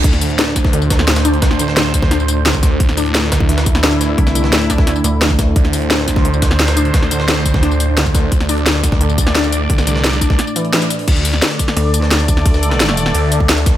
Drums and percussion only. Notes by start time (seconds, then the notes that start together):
0.04 kick, closed hi-hat, crash
0.13 snare, closed hi-hat
0.21 closed hi-hat, open hi-hat, tambourine
0.30 closed hi-hat
0.39 snare, closed hi-hat
0.47 snare
0.56 kick, snare, closed hi-hat, tambourine
0.65 kick, snare
0.73 closed hi-hat
0.82 tambourine
0.90 kick, snare, closed hi-hat, tambourine
0.99 snare
1.08 snare, closed hi-hat
1.16 snare, closed hi-hat, tambourine
1.25 closed hi-hat, tambourine
1.34 closed hi-hat
1.42 kick, snare, closed hi-hat
1.51 snare
1.59 closed hi-hat, tambourine
1.68 snare
1.77 snare, closed hi-hat
1.94 kick, closed hi-hat, tambourine
2.02 kick, snare
2.11 snare, closed hi-hat
2.20 tambourine
2.28 closed hi-hat, tambourine
2.46 snare, closed hi-hat
2.54 kick, tambourine
2.63 kick, snare, closed hi-hat, tambourine
2.80 kick, closed hi-hat
2.89 snare, closed hi-hat
2.97 closed hi-hat, open hi-hat, tambourine
3.06 closed hi-hat
3.15 snare, closed hi-hat
3.23 snare
3.32 kick, snare, closed hi-hat, tambourine
3.40 kick
3.49 snare, closed hi-hat
3.58 snare, closed hi-hat, tambourine
3.66 kick, closed hi-hat, tambourine
3.75 snare, closed hi-hat
3.84 snare, closed hi-hat
3.92 tambourine
4.01 snare, closed hi-hat, tambourine
4.18 kick, closed hi-hat
4.27 snare, tambourine
4.35 closed hi-hat, tambourine
4.44 snare
4.53 snare, closed hi-hat
4.61 tambourine
4.70 kick, snare, closed hi-hat, tambourine
4.78 kick, snare
4.87 snare, closed hi-hat
4.96 tambourine
5.04 closed hi-hat, tambourine
5.22 snare, closed hi-hat
5.30 kick, tambourine
5.39 kick, snare, closed hi-hat, tambourine
5.56 kick, closed hi-hat
5.65 snare, closed hi-hat
5.73 closed hi-hat, open hi-hat, tambourine
5.82 closed hi-hat
5.90 snare, closed hi-hat
5.99 snare
6.08 kick, snare, closed hi-hat, tambourine
6.16 kick, snare
6.25 closed hi-hat
6.34 tambourine
6.42 kick, snare, closed hi-hat, tambourine
6.51 snare
6.59 snare, closed hi-hat
6.68 snare, closed hi-hat, tambourine
6.77 closed hi-hat, tambourine
6.85 closed hi-hat
6.94 kick, snare, closed hi-hat
7.03 snare
7.11 closed hi-hat, tambourine
7.20 snare
7.28 snare, closed hi-hat
7.46 kick, closed hi-hat, tambourine
7.54 kick, snare
7.63 snare, closed hi-hat
7.71 tambourine
7.80 closed hi-hat, tambourine
7.97 snare, closed hi-hat
8.06 kick, tambourine
8.15 kick, snare, closed hi-hat, tambourine
8.32 kick, closed hi-hat
8.40 snare, closed hi-hat
8.49 closed hi-hat, open hi-hat, tambourine
8.58 closed hi-hat
8.66 snare, closed hi-hat
8.75 snare
8.84 kick, snare, closed hi-hat, tambourine
8.92 kick, snare
9.01 closed hi-hat
9.09 tambourine
9.18 kick, closed hi-hat, tambourine
9.27 snare
9.35 snare, closed hi-hat
9.44 tambourine
9.52 closed hi-hat, tambourine
9.70 kick, closed hi-hat
9.78 snare, tambourine
9.87 closed hi-hat, tambourine
9.96 snare
10.04 snare, closed hi-hat
10.13 tambourine
10.21 kick, closed hi-hat, tambourine
10.30 kick, snare
10.39 snare, closed hi-hat
10.47 tambourine
10.56 closed hi-hat, tambourine
10.65 closed hi-hat
10.73 snare, closed hi-hat, open hi-hat
10.82 closed hi-hat, tambourine
10.90 closed hi-hat, tambourine
10.99 open hi-hat
11.08 kick, closed hi-hat, crash, ride
11.16 closed hi-hat, tambourine
11.25 closed hi-hat, open hi-hat, tambourine
11.34 snare, closed hi-hat
11.42 snare, closed hi-hat, ride
11.51 snare, tambourine
11.59 kick, closed hi-hat, tambourine
11.68 snare
11.77 closed hi-hat, ride
11.94 closed hi-hat, tambourine
12.02 snare
12.11 snare, closed hi-hat, ride
12.20 tambourine
12.28 kick, closed hi-hat, tambourine
12.37 snare
12.46 kick, closed hi-hat, ride
12.54 snare, tambourine
12.63 closed hi-hat, tambourine
12.71 snare
12.80 snare, closed hi-hat, ride
12.89 snare, tambourine
12.97 closed hi-hat, tambourine
13.06 snare
13.15 closed hi-hat, ride
13.32 closed hi-hat, tambourine
13.40 kick
13.49 snare, closed hi-hat, ride
13.58 tambourine
13.66 kick, snare, closed hi-hat, tambourine